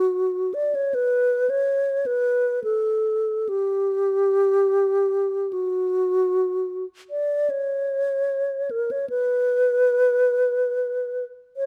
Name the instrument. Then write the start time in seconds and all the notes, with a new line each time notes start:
alto flute
Already playing: F#4
0.54 D5
0.75 C#5
0.94 B4
1.50 C#5
2.06 B4
2.64 A4
3.49 G4
5.53 F#4
7.10 D5
7.50 C#5
8.71 A#4
8.91 C#5
9.10 B4
11.57 C#5